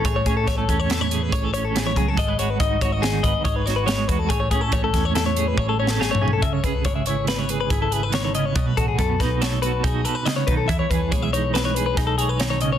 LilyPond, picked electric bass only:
\new Staff \with { instrumentName = "Picked electric bass" } { \clef bass \time 5/4 \key a \lydian \tempo 4 = 141 a,,8 a,8 a,,8 e,4. a,,4. cis,8 | gis,,8 gis,,8 gis,,8 gis,,4 gis,,16 r16 gis,,4. e,8 | a,,8 a,8 a,,8 e,4. a,,4. b,,8 | cis,16 r16 cis,8 gis,,2 gis,,2 |
b,,8 a,,8 fis,8 b,,4. b,,8 r4 b,,8 | e,16 r16 e,8 b,,2 b,,2 | }